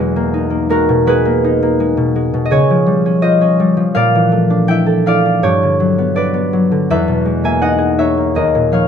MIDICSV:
0, 0, Header, 1, 2, 480
1, 0, Start_track
1, 0, Tempo, 722022
1, 1675, Time_signature, 4, 2, 24, 8
1, 2625, Tempo, 735294
1, 5843, End_track
2, 0, Start_track
2, 0, Title_t, "Harp"
2, 0, Program_c, 0, 46
2, 0, Note_on_c, 0, 40, 71
2, 0, Note_on_c, 0, 47, 55
2, 0, Note_on_c, 0, 56, 64
2, 0, Note_on_c, 0, 59, 57
2, 0, Note_on_c, 0, 63, 57
2, 0, Note_on_c, 0, 68, 69
2, 0, Note_on_c, 0, 71, 79
2, 0, Note_on_c, 0, 75, 69
2, 0, Note_on_c, 0, 76, 101
2, 0, Note_on_c, 0, 80, 107
2, 107, Note_on_c, 0, 58, 63
2, 216, Note_off_c, 0, 63, 0
2, 224, Note_on_c, 0, 63, 53
2, 326, Note_off_c, 0, 58, 0
2, 334, Note_on_c, 0, 58, 59
2, 454, Note_off_c, 0, 56, 0
2, 460, Note_off_c, 0, 68, 0
2, 462, Note_on_c, 0, 56, 54
2, 467, Note_on_c, 0, 70, 96
2, 476, Note_on_c, 0, 66, 73
2, 583, Note_off_c, 0, 47, 0
2, 591, Note_on_c, 0, 47, 66
2, 703, Note_off_c, 0, 56, 0
2, 705, Note_off_c, 0, 71, 0
2, 709, Note_on_c, 0, 56, 71
2, 714, Note_on_c, 0, 71, 109
2, 725, Note_on_c, 0, 68, 78
2, 825, Note_off_c, 0, 58, 0
2, 833, Note_on_c, 0, 58, 57
2, 951, Note_off_c, 0, 63, 0
2, 959, Note_on_c, 0, 63, 59
2, 1072, Note_off_c, 0, 58, 0
2, 1080, Note_on_c, 0, 58, 63
2, 1188, Note_off_c, 0, 56, 0
2, 1196, Note_on_c, 0, 56, 57
2, 1303, Note_off_c, 0, 47, 0
2, 1311, Note_on_c, 0, 47, 60
2, 1426, Note_off_c, 0, 56, 0
2, 1434, Note_on_c, 0, 56, 61
2, 1545, Note_off_c, 0, 47, 0
2, 1553, Note_on_c, 0, 47, 59
2, 1624, Note_off_c, 0, 75, 0
2, 1632, Note_on_c, 0, 75, 80
2, 1664, Note_off_c, 0, 68, 0
2, 1666, Note_on_c, 0, 49, 67
2, 1670, Note_on_c, 0, 68, 82
2, 1674, Note_on_c, 0, 73, 99
2, 1689, Note_off_c, 0, 59, 0
2, 1690, Note_off_c, 0, 40, 0
2, 1692, Note_off_c, 0, 47, 0
2, 1693, Note_off_c, 0, 76, 0
2, 1696, Note_off_c, 0, 70, 0
2, 1697, Note_off_c, 0, 71, 0
2, 1699, Note_off_c, 0, 58, 0
2, 1699, Note_off_c, 0, 63, 0
2, 1700, Note_off_c, 0, 66, 0
2, 1705, Note_off_c, 0, 75, 0
2, 1796, Note_on_c, 0, 53, 56
2, 1839, Note_off_c, 0, 80, 0
2, 1904, Note_on_c, 0, 55, 65
2, 2033, Note_on_c, 0, 61, 57
2, 2141, Note_on_c, 0, 75, 97
2, 2145, Note_on_c, 0, 65, 60
2, 2152, Note_on_c, 0, 72, 70
2, 2260, Note_off_c, 0, 61, 0
2, 2268, Note_on_c, 0, 61, 62
2, 2384, Note_off_c, 0, 55, 0
2, 2392, Note_on_c, 0, 55, 62
2, 2497, Note_off_c, 0, 53, 0
2, 2505, Note_on_c, 0, 53, 61
2, 2624, Note_on_c, 0, 77, 115
2, 2627, Note_on_c, 0, 46, 83
2, 2635, Note_on_c, 0, 74, 87
2, 2640, Note_off_c, 0, 49, 0
2, 2643, Note_off_c, 0, 56, 0
2, 2643, Note_off_c, 0, 68, 0
2, 2643, Note_off_c, 0, 73, 0
2, 2645, Note_off_c, 0, 61, 0
2, 2647, Note_off_c, 0, 55, 0
2, 2647, Note_off_c, 0, 72, 0
2, 2757, Note_on_c, 0, 52, 57
2, 2867, Note_on_c, 0, 57, 51
2, 2956, Note_off_c, 0, 75, 0
2, 2986, Note_on_c, 0, 62, 59
2, 3103, Note_on_c, 0, 79, 100
2, 3109, Note_on_c, 0, 64, 65
2, 3120, Note_on_c, 0, 76, 85
2, 3221, Note_on_c, 0, 69, 63
2, 3345, Note_off_c, 0, 64, 0
2, 3347, Note_off_c, 0, 77, 0
2, 3351, Note_on_c, 0, 64, 65
2, 3356, Note_off_c, 0, 74, 0
2, 3357, Note_on_c, 0, 77, 108
2, 3364, Note_on_c, 0, 74, 79
2, 3470, Note_off_c, 0, 62, 0
2, 3478, Note_on_c, 0, 62, 51
2, 3517, Note_off_c, 0, 79, 0
2, 3591, Note_on_c, 0, 43, 68
2, 3594, Note_on_c, 0, 73, 100
2, 3598, Note_on_c, 0, 67, 73
2, 3608, Note_off_c, 0, 65, 0
2, 3608, Note_off_c, 0, 69, 0
2, 3609, Note_off_c, 0, 53, 0
2, 3610, Note_off_c, 0, 46, 0
2, 3611, Note_off_c, 0, 57, 0
2, 3612, Note_off_c, 0, 64, 0
2, 3613, Note_off_c, 0, 77, 0
2, 3616, Note_off_c, 0, 52, 0
2, 3617, Note_off_c, 0, 76, 0
2, 3721, Note_on_c, 0, 50, 54
2, 3833, Note_on_c, 0, 54, 58
2, 3953, Note_on_c, 0, 59, 55
2, 4056, Note_off_c, 0, 62, 0
2, 4060, Note_off_c, 0, 74, 0
2, 4064, Note_on_c, 0, 62, 49
2, 4068, Note_on_c, 0, 74, 88
2, 4077, Note_on_c, 0, 71, 66
2, 4177, Note_off_c, 0, 59, 0
2, 4185, Note_on_c, 0, 59, 64
2, 4303, Note_off_c, 0, 54, 0
2, 4311, Note_on_c, 0, 54, 55
2, 4423, Note_off_c, 0, 50, 0
2, 4431, Note_on_c, 0, 50, 53
2, 4551, Note_off_c, 0, 71, 0
2, 4554, Note_on_c, 0, 40, 83
2, 4558, Note_on_c, 0, 76, 100
2, 4559, Note_on_c, 0, 71, 82
2, 4566, Note_off_c, 0, 62, 0
2, 4568, Note_off_c, 0, 74, 0
2, 4569, Note_off_c, 0, 54, 0
2, 4570, Note_off_c, 0, 50, 0
2, 4571, Note_off_c, 0, 43, 0
2, 4571, Note_off_c, 0, 73, 0
2, 4574, Note_off_c, 0, 67, 0
2, 4669, Note_on_c, 0, 47, 57
2, 4783, Note_on_c, 0, 56, 51
2, 4903, Note_on_c, 0, 58, 54
2, 4906, Note_off_c, 0, 76, 0
2, 4909, Note_on_c, 0, 80, 95
2, 4913, Note_on_c, 0, 76, 70
2, 5019, Note_on_c, 0, 78, 98
2, 5021, Note_on_c, 0, 63, 56
2, 5024, Note_on_c, 0, 75, 70
2, 5111, Note_off_c, 0, 80, 0
2, 5127, Note_on_c, 0, 68, 62
2, 5252, Note_off_c, 0, 76, 0
2, 5253, Note_off_c, 0, 63, 0
2, 5259, Note_on_c, 0, 63, 55
2, 5262, Note_on_c, 0, 76, 93
2, 5266, Note_on_c, 0, 73, 68
2, 5375, Note_off_c, 0, 58, 0
2, 5383, Note_on_c, 0, 58, 51
2, 5432, Note_off_c, 0, 78, 0
2, 5496, Note_off_c, 0, 75, 0
2, 5499, Note_on_c, 0, 39, 54
2, 5505, Note_on_c, 0, 75, 74
2, 5510, Note_on_c, 0, 70, 70
2, 5523, Note_off_c, 0, 59, 0
2, 5523, Note_off_c, 0, 76, 0
2, 5526, Note_off_c, 0, 47, 0
2, 5529, Note_off_c, 0, 40, 0
2, 5531, Note_off_c, 0, 71, 0
2, 5628, Note_on_c, 0, 46, 52
2, 5738, Note_on_c, 0, 53, 50
2, 5744, Note_off_c, 0, 73, 0
2, 5745, Note_on_c, 0, 77, 80
2, 5751, Note_on_c, 0, 73, 60
2, 5843, Note_off_c, 0, 39, 0
2, 5843, Note_off_c, 0, 46, 0
2, 5843, Note_off_c, 0, 53, 0
2, 5843, Note_off_c, 0, 56, 0
2, 5843, Note_off_c, 0, 58, 0
2, 5843, Note_off_c, 0, 63, 0
2, 5843, Note_off_c, 0, 68, 0
2, 5843, Note_off_c, 0, 70, 0
2, 5843, Note_off_c, 0, 73, 0
2, 5843, Note_off_c, 0, 75, 0
2, 5843, Note_off_c, 0, 77, 0
2, 5843, End_track
0, 0, End_of_file